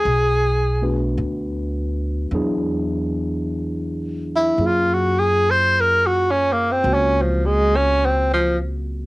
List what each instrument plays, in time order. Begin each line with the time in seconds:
Already playing: tenor saxophone G#4
0.05 upright bass B1
0.82 tine electric piano A3 B3 D4 F#4 B4
1.18 upright bass D2
2.31 upright bass E2, tine electric piano F#3 B3 D4 E4 G#4
4.36 tenor saxophone E4
4.58 upright bass F#2, tine electric piano F#3 A#3 C#4 F4 G#4
4.67 tenor saxophone F4
4.93 tenor saxophone F#4
5.19 tenor saxophone G#4
5.51 tenor saxophone C5
5.81 tenor saxophone A#4
6.07 tenor saxophone F#4
6.31 tenor saxophone C#4
6.53 tenor saxophone A#3
6.72 tenor saxophone C4
6.84 upright bass C#2, tine electric piano A#3 C4 F#4
6.94 tenor saxophone C#4
7.22 tenor saxophone F3
7.46 tenor saxophone G#3
7.76 tenor saxophone C#4
8.06 tenor saxophone C4
8.34 tenor saxophone F3